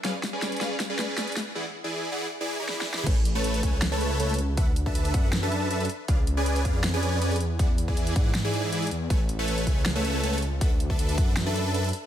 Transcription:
<<
  \new Staff \with { instrumentName = "Supersaw synth" } { \time 4/4 \key a \major \tempo 4 = 159 <cis' gis' b' d'' eis''>16 r8 <cis' gis' b' d'' gis''>8. <cis' gis' b' d'' eis''>16 r8 <cis' gis' b' d'' gis''>8. <cis' gis' b' d'' gis''>16 r8. | <e e' gis' d'' fis''>16 r8 <e e' gis' d'' gis''>8. <e e' gis' d'' fis''>16 r8 <e e' gis' d'' gis''>8 <e e' gis' d'' b''>4 <e e' gis' d'' b''>16 | <a a' b' cis'' gis''>16 r8 <a a' b' cis'' a''>8. <a a' b' cis'' gis''>16 r8 <a a' b' cis'' a''>8. <a a' b' cis'' a''>16 r8. | <d' a' b' e'' fis''>16 r8 <d' a' b' e'' a''>8. <d' a' b' e'' fis''>16 r8 <d' a' b' e'' a''>8. <d' a' b' e'' a''>16 r8. |
<cis' gis' b' d'' eis''>16 r8 <cis' gis' b' d'' gis''>8. <cis' gis' b' d'' eis''>16 r8 <cis' gis' b' d'' gis''>8. <cis' gis' b' d'' gis''>16 r8. | <e e' gis' d'' fis''>16 r8 <e e' gis' d'' gis''>8. <e e' d'' fis''>16 r8 <e e' gis' d'' gis''>8. <e e' gis' d'' gis''>16 r8. | <a a' b' cis'' gis''>16 r8 <a a' b' cis'' a''>8. <a a' b' cis''>16 r8 <a a' b' cis'' a''>8. <a a' b' cis'' a''>16 r8. | <d' a' b' e'' fis''>16 r8 <d' a' b' e'' a''>8. <d' a' b' e'' fis''>16 r8 <d' a' b' e'' a''>8. <d' a' b' e'' a''>16 r8. | }
  \new Staff \with { instrumentName = "Detuned saw bass" } { \clef bass \time 4/4 \key a \major r1 | r1 | a,,4. cis,2~ cis,8 | d,4 d,8 fis,2 r8 |
cis,4. eis,2 e,8~ | e,4 e,8 gis,2 e,8 | a,,4. cis,2~ cis,8 | d,4 d,8 fis,2 r8 | }
  \new DrumStaff \with { instrumentName = "Drums" } \drummode { \time 4/4 <hh sn>8 <hh sn>8 <hh sn>16 hh32 hh32 <hh sn>8 <hh sn>8 <hh sn>8 <hh sn>16 hh32 hh32 <hh sn>8 | r4 r4 r4 \tuplet 3/2 { sn8 sn8 sn8 } | <cymc hh bd>8 hh8 hh16 hh16 <hh bd>8 <hh sn>8 hh8 hh16 hh32 hh32 hh8 | <hh bd>8 hh16 bd16 hh16 hh16 <hh bd>8 <hh sn>8 hh8 hh16 hh32 hh32 hh8 |
<hh bd>8 hh8 hh16 hh16 <hh bd>8 <hh sn>8 hh8 hh16 hh32 hh32 hh8 | <hh bd>8 hh16 bd16 hh16 hh16 <hh bd>8 <hh sn>8 hh8 hh16 hh32 hh32 hh8 | <hh bd>8 hh8 hh16 hh16 <hh bd>8 <hh sn>8 hh8 hh16 hh32 hh32 hh8 | <hh bd>8 hh16 bd16 hh16 hh16 <hh bd>8 <hh sn>8 hh8 hh16 hh32 hh32 hh8 | }
>>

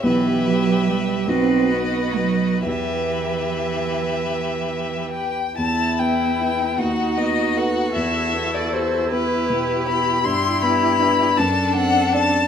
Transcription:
<<
  \new Staff \with { instrumentName = "Violin" } { \time 6/8 \key e \minor \tempo 4. = 51 e''4. dis''4. | e''2~ e''8 g''8 | a''8 g''4 fis''8 dis''8 fis''8 | e''8. d''16 c''8 b'4 b''8 |
c'''8 b''4 a''8 fis''8 a''8 | }
  \new Staff \with { instrumentName = "Violin" } { \time 6/8 \key e \minor b'4. b'4. | b'2~ b'8. r16 | e'4. fis'4.~ | fis'4. g'4. |
g'4. a'4. | }
  \new Staff \with { instrumentName = "Viola" } { \time 6/8 \key e \minor g'4. fis'4. | g'2~ g'8. r16 | b4. dis'4. | e'2. |
e'4. d'4. | }
  \new Staff \with { instrumentName = "Cello" } { \time 6/8 \key e \minor e8 fis8 g8 c'8 b8 fis8 | e2~ e8 r8 | e'4. fis'4. | a'4. g'4. |
e'4. d'4. | }
  \new Staff \with { instrumentName = "Grand piano" } { \time 6/8 \key e \minor <b,, b e' g'>4. <b,, b dis' fis'>4. | <e, b e' g'>2. | e,8 b8 <e' b'>8 dis,8 b8 <a' b'>8 | e,8 b8 g'8 b8 b,8 b8 |
g,8 b8 <d' b'>8 fis,8 c'8 <d' d''>8 | }
>>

